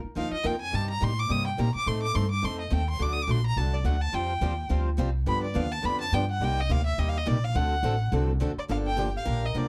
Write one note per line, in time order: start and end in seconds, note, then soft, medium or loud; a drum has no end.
0.04 muted upright bass stroke soft
0.15 0.31 D#2 medium
0.15 0.34 F3 medium
0.15 0.34 A#3 medium
0.15 0.35 D#4 medium
0.15 0.35 F4 medium
0.15 0.35 A#4 medium
0.15 0.32 F5 medium
0.31 0.48 D#5 medium
0.31 muted upright bass stroke soft
0.44 0.72 F2 medium
0.44 0.54 F3 medium
0.44 0.54 A#3 medium
0.44 0.55 D#4 loud
0.44 0.55 F4 medium
0.44 0.55 A#4 medium
0.44 0.60 G5 medium
0.61 0.76 G#5 loud
0.72 1.01 G2 medium
0.72 0.91 C3 medium
0.72 0.91 G3 medium
0.72 0.91 A#3 medium
0.72 0.92 D#4 medium
0.72 0.92 G4 medium
0.72 0.90 A5 medium
0.90 1.05 A#5 medium
1.01 1.29 A2 medium
1.01 1.11 C3 medium
1.01 1.11 G3 medium
1.01 1.11 A#3 medium
1.01 1.12 D#4 medium
1.01 1.12 G4 medium
1.01 1.21 C6 loud
1.19 1.32 D6 loud
1.29 1.57 G2 medium
1.29 1.48 C3 medium
1.29 1.48 G3 medium
1.29 1.48 A#3 medium
1.29 1.48 D#4 medium
1.29 1.48 G4 medium
1.29 1.46 D#6 loud
1.47 1.61 G5 medium
1.59 1.73 A#2 medium
1.59 1.68 C3 medium
1.59 1.68 G3 medium
1.59 1.69 A#3 medium
1.59 1.69 D#4 medium
1.59 1.69 G4 medium
1.59 1.74 A#5 medium
1.75 1.89 D6 loud
1.75 muted upright bass stroke soft
1.86 2.14 A2 medium
1.86 2.05 A3 medium
1.86 2.05 C4 medium
1.86 2.05 D#4 medium
1.86 2.06 A4 medium
1.86 2.02 C6 loud
2.03 2.17 D6 loud
2.14 2.43 G2 loud
2.14 2.25 A3 medium
2.14 2.25 C4 medium
2.14 2.25 D#4 medium
2.14 2.25 A4 medium
2.14 2.30 C6 loud
2.31 2.46 D6 loud
2.42 2.71 F2 medium
2.42 2.61 A3 medium
2.42 2.61 C4 medium
2.42 2.62 D#4 medium
2.42 2.62 A4 medium
2.42 2.60 C6 medium
2.61 2.75 D#5 medium
2.70 2.99 D#2 medium
2.70 2.81 A3 medium
2.70 2.81 C4 medium
2.70 2.81 D#4 medium
2.70 2.82 A4 medium
2.70 2.88 G5 medium
2.90 3.04 C6 medium
2.99 3.27 D2 medium
2.99 3.18 D3 medium
2.99 3.18 F#3 medium
2.99 3.18 A3 medium
2.99 3.18 D4 medium
2.99 3.18 F#4 medium
2.99 3.19 A4 medium
2.99 3.14 D6 medium
3.13 3.24 D#6 loud
3.22 3.32 D6 medium
3.27 3.55 A#1 medium
3.27 3.38 D3 medium
3.27 3.38 F#3 medium
3.27 3.39 A3 medium
3.27 3.39 D4 medium
3.27 3.39 F#4 medium
3.27 3.38 A4 loud
3.27 3.46 C6 medium
3.46 3.59 A#5 loud
3.56 3.83 C2 medium
3.56 3.75 D3 medium
3.56 3.75 F#3 medium
3.56 3.75 A3 medium
3.56 3.75 D4 medium
3.56 3.76 F#4 medium
3.56 3.76 A4 medium
3.56 3.75 A5 medium
3.74 3.87 D5 medium
3.84 4.12 D2 medium
3.84 3.95 D3 medium
3.84 3.95 F#3 medium
3.84 3.96 A3 medium
3.84 3.96 D4 medium
3.84 3.95 F#4 loud
3.84 3.96 A4 medium
3.84 4.03 F#5 medium
4.01 4.16 A5 loud
4.12 4.41 F2 medium
4.12 4.32 F3 medium
4.12 4.31 G3 medium
4.12 4.32 C4 medium
4.12 4.32 F4 medium
4.12 4.32 G4 medium
4.12 4.32 C5 medium
4.12 4.71 G5 medium
4.41 4.69 D#2 medium
4.41 4.52 F3 medium
4.41 4.52 G3 medium
4.41 4.52 C4 medium
4.41 4.52 F4 medium
4.41 4.52 G4 medium
4.41 4.52 C5 loud
4.69 4.98 D2 medium
4.69 4.88 F3 medium
4.69 4.88 G3 medium
4.69 4.89 C4 medium
4.69 4.89 F4 medium
4.69 4.89 G4 medium
4.69 4.89 C5 medium
4.98 5.26 C2 medium
4.98 5.08 F3 medium
4.98 5.09 G3 medium
4.98 5.09 C4 medium
4.98 5.09 F4 loud
4.98 5.09 G4 loud
4.98 5.09 C5 loud
5.26 5.54 G2 medium
5.26 5.45 D3 medium
5.26 5.45 F3 medium
5.26 5.45 B3 medium
5.26 5.46 D4 medium
5.26 5.46 G4 medium
5.26 5.43 B5 medium
5.44 5.57 D5 medium
5.54 5.83 D#2 loud
5.54 5.65 D3 medium
5.54 5.65 F3 medium
5.54 5.65 B3 medium
5.54 5.66 D4 loud
5.54 5.66 G4 medium
5.54 5.73 F5 loud
5.72 5.86 A5 loud
5.82 6.12 F2 medium
5.82 6.02 D3 medium
5.82 6.02 F3 medium
5.82 6.02 B3 medium
5.82 6.03 D4 medium
5.82 6.02 G4 medium
5.82 6.00 B5 loud
6.01 6.15 A5 loud
6.12 6.39 G2 medium
6.12 6.23 D3 medium
6.12 6.23 F3 medium
6.12 6.23 B3 medium
6.12 6.24 D4 loud
6.12 6.24 G4 loud
6.12 6.29 G5 loud
6.31 6.45 F#5 loud
6.40 6.68 C2 medium
6.40 6.59 C3 medium
6.40 6.60 G3 medium
6.40 6.60 A#3 medium
6.40 6.60 D#4 medium
6.40 6.60 G4 medium
6.40 6.62 G5 loud
6.60 6.73 D#5 loud
6.69 6.97 D2 medium
6.69 6.80 C3 medium
6.69 6.80 G3 medium
6.69 6.80 A#3 medium
6.69 6.80 D#4 medium
6.69 6.80 G4 medium
6.69 6.85 F5 loud
6.86 7.00 E5 loud
6.98 7.26 D#2 medium
6.98 7.16 C3 medium
6.98 7.17 G3 medium
6.98 7.17 A#3 medium
6.98 7.17 D#4 medium
6.98 7.17 G4 medium
6.98 7.10 D#5 medium
7.09 7.19 F5 loud
7.17 7.29 D#5 medium
7.26 7.54 A#1 medium
7.26 7.36 C3 medium
7.26 7.37 G3 loud
7.26 7.37 A#3 loud
7.26 7.37 D#4 loud
7.26 7.37 G4 loud
7.26 7.46 D5 medium
7.44 7.57 F5 loud
7.55 7.82 D2 medium
7.55 7.73 D3 medium
7.55 7.74 A3 medium
7.55 7.74 C4 medium
7.55 7.74 F#4 medium
7.55 7.74 A4 medium
7.55 8.12 F#5 loud
7.83 8.11 A1 loud
7.83 7.93 D3 medium
7.83 7.94 A3 medium
7.83 7.94 C4 medium
7.83 7.94 F#4 medium
7.83 7.94 A4 loud
8.12 8.39 C2 loud
8.12 8.30 D3 medium
8.12 8.30 A3 medium
8.12 8.31 C4 medium
8.12 8.31 F#4 medium
8.12 8.31 A4 medium
8.40 8.55 D2 loud
8.40 8.50 D3 medium
8.40 8.51 A3 medium
8.40 8.51 C4 medium
8.40 8.51 F#4 loud
8.40 8.51 A4 medium
8.57 8.64 D5 medium
8.57 muted upright bass stroke soft
8.69 9.15 G1 medium
8.69 8.87 D3 medium
8.69 8.88 F3 medium
8.69 8.88 A#3 medium
8.69 8.88 D4 medium
8.69 8.88 G4 medium
8.69 8.98 A4 medium
8.69 8.78 F5 medium
8.87 9.13 G5 medium
8.97 9.08 D3 medium
8.97 9.08 F3 medium
8.97 9.08 A#3 medium
8.97 9.08 D4 medium
8.97 9.24 G4 medium
8.97 9.08 G4 medium
9.16 9.47 F5 medium
9.25 9.50 A#1 medium
9.25 9.44 D3 medium
9.25 9.44 F3 medium
9.25 9.45 A#3 medium
9.25 9.45 D4 medium
9.25 9.45 G4 medium
9.25 9.68 A#4 medium
9.46 9.60 D#5 medium
9.55 9.68 C2 medium
9.55 9.65 D3 medium
9.55 9.65 F3 medium
9.55 9.65 A#3 medium
9.55 9.65 D4 medium
9.55 9.65 G4 medium
9.55 9.68 D5 medium